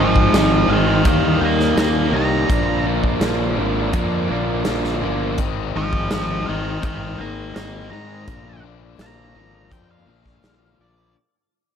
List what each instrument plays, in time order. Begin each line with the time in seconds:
Already playing: fingered electric bass G#1, overdriven electric guitar G#2
0.00 overdriven electric guitar D#3 G#3 C4 D#4 G#4, lead electric guitar C5 F5
0.16 kick
0.33 fingered electric bass G#1, overdriven electric guitar G#2 D#3 G#3 C4 D#4 G#4, lead electric guitar C5, snare, closed hi-hat
0.37 lead electric guitar F5
0.68 fingered electric bass G#1, overdriven electric guitar G#2 D#3 G#3 C4 D#4 G#4
0.72 lead electric guitar D#5 G5
1.05 fingered electric bass D#2, overdriven electric guitar D#3 G3 A#3 D#4 G4, lead electric guitar D#5 G5, kick, closed hi-hat
1.41 fingered electric bass D#2, overdriven electric guitar D#3 G3 A#3 D#4 G4, lead electric guitar F5
1.45 lead electric guitar A#5
1.60 snare
1.77 fingered electric bass D#2, overdriven electric guitar D#3 G3 A#3 D#4 G4, lead electric guitar F5 A#5, snare, closed hi-hat
2.12 fingered electric bass C2, overdriven electric guitar D#3 G3 A#3 D#4 G4
2.16 lead electric guitar A#5
2.48 fingered electric bass A#1, overdriven electric guitar A#2 D3 F3 A#3 D4 A#4, kick, closed hi-hat
2.85 overdriven electric guitar A#2 D3 F3 A#3 D4 A#4
3.04 kick
3.20 fingered electric bass A#1, overdriven electric guitar A#2 D3 F3 A#3 D4 A#4, snare, closed hi-hat
3.56 fingered electric bass G#1, overdriven electric guitar A#2 D3 F3 A#3 D4 A#4
3.92 fingered electric bass F2, overdriven electric guitar A#2 D3 F3 A#3 D4 A#4, kick, closed hi-hat
4.29 fingered electric bass A#1, overdriven electric guitar A#2 D3 F3 A#3 D4 A#4
4.65 fingered electric bass A#1, overdriven electric guitar A#2 D3 F3 A#3 D4 A#4, snare, closed hi-hat
4.84 snare
5.01 fingered electric bass G1, overdriven electric guitar A#2 D3 F3 A#3 D4 A#4
5.38 fingered electric bass G#1, overdriven electric guitar G#2 D#3 G#3 C4 D#4, kick, closed hi-hat
5.75 fingered electric bass G#1, overdriven electric guitar G#2 D#3 G#3 C4 D#4, lead electric guitar C5 F5
5.93 kick
6.11 fingered electric bass G#1, overdriven electric guitar G#2 D#3 G#3 C4 D#4, lead electric guitar C5 F5, snare, closed hi-hat
6.47 fingered electric bass G#1, overdriven electric guitar G#2 D#3 G#3 C4 D#4, lead electric guitar D#5 G5
6.83 fingered electric bass G#1, overdriven electric guitar G#2 D#3 G#3 C4 D#4, lead electric guitar D#5 G5, kick, closed hi-hat
7.19 fingered electric bass G#1, overdriven electric guitar G#2 D#3 G#3 C4 D#4, lead electric guitar F5 A#5
7.55 fingered electric bass G#1, overdriven electric guitar G#2 D#3 G#3 C4 D#4, lead electric guitar F5 A#5, snare, closed hi-hat
7.91 overdriven electric guitar G#2 D#3 G#3 C4 D#4, fingered electric bass G#2, lead electric guitar A#5
8.27 fingered electric bass A#1, overdriven electric guitar A#2 D3 F3 A#3 D4, kick, closed hi-hat
8.63 overdriven electric guitar A#2 D3 F3 A#3 D4
8.98 fingered electric bass A#1, overdriven electric guitar A#2 D3 F3 A#3 D4, lead electric guitar A#5, snare, closed hi-hat
9.34 fingered electric bass G#1, overdriven electric guitar A#2 D3 F3 A#3 D4
9.71 fingered electric bass F2, overdriven electric guitar A#2 D3 F3 A#3 D4, lead electric guitar G5, kick, closed hi-hat
9.91 lead electric guitar F5
10.06 fingered electric bass A#1, overdriven electric guitar A#2 D3 F3 A#3 D4
10.26 kick, snare
10.43 fingered electric bass A#1, overdriven electric guitar A#2 D3 F3 A#3 D4, snare, closed hi-hat
10.78 fingered electric bass A#1, overdriven electric guitar A#2 D3 F3 A#3 D4, lead electric guitar D5